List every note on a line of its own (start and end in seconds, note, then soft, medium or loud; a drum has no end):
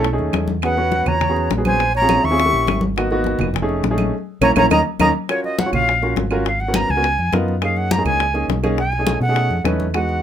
0.00 0.18 B1 medium
0.00 high conga soft
0.04 high bongo medium
0.13 0.48 A3 medium
0.13 0.49 C#4 medium
0.13 0.48 D#4 medium
0.13 0.49 G#4 medium
0.18 0.33 D#2 medium
0.18 high bongo soft
0.18 high conga soft
0.33 1.01 E2 medium
0.33 high bongo medium
0.33 low bongo medium
0.33 high conga medium
0.33 claves medium
0.48 high conga medium
0.62 0.73 B3 medium
0.62 0.74 C#4 medium
0.62 0.74 F#4 medium
0.62 0.74 G#4 medium
0.62 1.09 B4 medium
0.62 1.09 F#5 medium
0.62 high bongo medium
0.62 high conga soft
0.62 claves medium
0.77 1.13 B3 medium
0.77 1.13 C#4 medium
0.77 1.14 F#4 medium
0.77 1.14 B4 medium
0.77 high conga soft
0.92 high bongo medium
0.92 high conga medium
1.06 1.48 E2 medium
1.06 1.51 C#5 medium
1.06 1.51 A#5 medium
1.06 high conga soft
1.06 low conga medium
1.06 claves medium
1.21 high bongo medium
1.21 high conga soft
1.21 low conga medium
1.29 1.50 B3 medium
1.29 1.50 C#4 medium
1.29 1.50 F#4 medium
1.29 1.50 G#4 medium
1.36 high conga soft
1.50 2.18 A#1 medium
1.50 high bongo medium
1.50 low bongo medium
1.50 high conga medium
1.58 1.80 B3 medium
1.58 1.80 C#4 medium
1.58 1.80 F#4 medium
1.58 1.80 G#4 medium
1.65 1.92 C5 medium
1.65 1.93 G#5 medium
1.65 high conga medium
1.65 claves medium
1.80 high bongo medium
1.80 high conga soft
1.95 2.24 C#5 medium
1.95 2.26 A#5 loud
1.95 high bongo soft
1.95 high conga soft
2.02 2.22 C4 medium
2.02 2.22 C#4 medium
2.02 2.22 F4 medium
2.02 2.22 G#4 medium
2.09 high bongo medium
2.09 high conga medium
2.09 claves medium
2.23 2.51 D#2 medium
2.23 2.81 E5 medium
2.23 2.82 C#6 loud
2.23 high bongo soft
2.23 high conga soft
2.31 2.38 C4 medium
2.31 2.38 C#4 medium
2.31 2.38 F4 medium
2.31 2.38 G#4 medium
2.38 high bongo medium
2.38 high conga soft
2.45 2.81 A#3 medium
2.45 2.81 C#4 medium
2.45 2.81 E4 medium
2.45 2.81 G4 medium
2.53 2.66 A#1 medium
2.53 high bongo soft
2.53 high conga soft
2.67 3.34 G#1 medium
2.67 high bongo medium
2.67 low bongo medium
2.67 high conga medium
2.67 claves medium
2.81 high conga medium
2.96 3.07 A#3 medium
2.96 3.07 B3 medium
2.96 3.07 D#4 medium
2.96 3.07 F#4 medium
2.96 high bongo medium
2.96 high conga soft
2.96 claves medium
3.11 3.47 A#3 medium
3.11 3.47 B3 medium
3.11 3.47 D#4 medium
3.11 3.47 F#4 loud
3.11 high conga soft
3.24 high bongo medium
3.24 high conga medium
3.39 3.80 F1 medium
3.39 high conga soft
3.39 low conga medium
3.39 claves medium
3.54 high bongo medium
3.54 high conga soft
3.54 low conga medium
3.62 3.82 A3 medium
3.62 3.82 C#4 medium
3.62 3.82 D#4 medium
3.62 3.83 G#4 loud
3.69 high conga soft
3.84 4.11 A#1 medium
3.84 high bongo medium
3.84 low bongo medium
3.84 high conga medium
3.90 4.12 A3 medium
3.90 4.13 C#4 medium
3.90 4.13 D#4 medium
3.90 4.13 G#4 medium
3.98 high conga medium
3.98 claves medium
4.41 4.52 A#1 loud
4.41 4.51 A#3 medium
4.41 4.51 C#4 medium
4.41 4.51 E4 medium
4.41 4.51 C#5 loud
4.41 4.52 A#5 medium
4.41 low bongo loud
4.41 high conga loud
4.41 claves loud
4.56 4.67 A#1 medium
4.56 4.66 A#3 medium
4.56 4.66 C#4 loud
4.56 4.66 E4 loud
4.56 4.65 C#5 loud
4.56 4.67 A#5 loud
4.56 low bongo loud
4.56 high conga medium
4.56 claves loud
4.71 4.81 D#2 loud
4.71 4.80 A#3 medium
4.71 4.80 C#4 loud
4.71 4.80 D#4 loud
4.71 4.80 D#5 medium
4.71 4.81 A#5 loud
4.71 low bongo loud
4.71 high conga loud
4.71 claves loud
5.00 5.11 D#2 loud
5.00 5.10 A#3 loud
5.00 5.10 C#4 loud
5.00 5.10 D#4 loud
5.00 5.09 D#5 medium
5.00 5.10 A#5 loud
5.00 low bongo loud
5.00 high conga loud
5.00 claves loud
5.29 5.55 C#4 medium
5.29 5.55 F4 medium
5.29 5.55 F#4 medium
5.29 5.55 A#4 medium
5.29 5.43 C#5 medium
5.29 high bongo medium
5.29 high conga soft
5.29 claves medium
5.44 5.61 D#5 medium
5.44 high conga soft
5.58 5.73 F#5 medium
5.58 high bongo medium
5.58 high conga loud
5.66 5.91 C#4 medium
5.66 5.91 F4 medium
5.66 5.91 F#4 medium
5.66 5.91 C#5 medium
5.72 6.13 A#1 medium
5.72 6.14 F5 medium
5.72 high bongo soft
5.72 high conga soft
5.72 low conga medium
5.72 claves medium
5.88 high bongo medium
5.88 high conga soft
6.02 6.22 C#4 medium
6.02 6.23 F4 medium
6.02 6.23 F#4 medium
6.02 6.23 A#4 medium
6.02 high bongo soft
6.02 high conga soft
6.16 6.84 G#1 medium
6.16 high bongo medium
6.16 low bongo medium
6.16 high conga medium
6.31 6.45 C#4 medium
6.31 6.46 F4 medium
6.31 6.46 F#4 medium
6.31 6.46 A#4 loud
6.31 high bongo soft
6.31 claves medium
6.45 6.62 F5 medium
6.45 high bongo medium
6.45 high conga soft
6.60 6.77 F#5 medium
6.60 high bongo soft
6.60 high conga soft
6.68 6.88 B3 medium
6.68 6.88 C#4 medium
6.68 6.88 F#4 medium
6.68 6.88 A#4 medium
6.74 6.92 A#5 medium
6.74 high bongo medium
6.74 high conga loud
6.74 claves medium
6.89 7.16 C#2 medium
6.89 7.33 G#5 medium
6.89 high conga soft
6.97 7.04 B3 medium
6.97 7.04 C#4 medium
6.97 7.04 F#4 medium
6.97 7.04 A#4 medium
7.04 high bongo medium
7.04 high conga soft
7.18 7.32 F2 medium
7.18 high bongo soft
7.18 high conga soft
7.33 8.00 F#2 medium
7.33 7.53 B3 medium
7.33 7.53 D#4 medium
7.33 7.53 F4 medium
7.33 7.53 A#4 loud
7.33 high bongo medium
7.33 low bongo medium
7.33 high conga medium
7.33 claves medium
7.48 high bongo soft
7.62 7.87 A#3 medium
7.62 7.87 C#4 medium
7.62 7.87 D#4 medium
7.62 7.88 G#4 medium
7.62 7.79 F5 medium
7.62 high bongo medium
7.62 high conga soft
7.62 claves medium
7.77 7.93 F#5 medium
7.77 high conga soft
7.91 8.06 A#5 medium
7.91 high bongo medium
7.91 high conga loud
7.98 8.24 A#3 medium
7.98 8.24 C#4 medium
7.98 8.24 D#4 medium
7.98 8.24 G#4 medium
8.05 8.46 C#2 medium
8.05 8.46 G#5 medium
8.05 high bongo soft
8.05 high conga soft
8.05 low conga medium
8.05 claves medium
8.20 high bongo medium
8.20 high conga soft
8.34 8.55 A#3 medium
8.34 8.55 C#4 medium
8.34 8.55 D#4 medium
8.34 8.55 G#4 medium
8.34 high bongo soft
8.34 high conga soft
8.48 9.16 B1 medium
8.48 high bongo medium
8.48 low bongo medium
8.48 high conga medium
8.63 8.78 A#3 loud
8.63 8.78 C#4 medium
8.63 8.78 D#4 medium
8.63 8.78 G#4 loud
8.63 high bongo soft
8.63 high conga medium
8.63 claves medium
8.78 9.19 G#5 medium
8.78 high bongo medium
8.78 high conga soft
8.92 high bongo soft
8.92 high conga soft
8.98 9.20 A3 medium
8.98 9.20 C#4 medium
8.98 9.20 D#4 medium
8.98 9.20 G#4 medium
9.06 high bongo medium
9.06 high conga loud
9.06 claves medium
9.20 9.48 B2 medium
9.20 9.62 F#5 medium
9.20 high conga soft
9.29 9.54 A3 medium
9.29 9.54 C#4 medium
9.29 9.54 D#4 medium
9.29 9.55 G#4 medium
9.36 high bongo medium
9.36 high conga soft
9.50 9.64 F2 medium
9.50 high bongo soft
9.50 high conga soft
9.64 10.22 E2 medium
9.64 9.85 A3 medium
9.64 9.85 C#4 medium
9.64 9.85 D#4 medium
9.64 9.85 B4 medium
9.64 high bongo medium
9.64 low bongo medium
9.64 high conga medium
9.64 claves medium
9.80 high bongo soft
9.80 high conga medium
9.94 10.20 G#3 medium
9.94 10.20 B3 medium
9.94 10.20 D#4 medium
9.94 10.20 F#4 medium
9.94 10.22 F#5 medium
9.94 high bongo medium
9.94 high conga soft
9.94 claves medium
10.09 high conga soft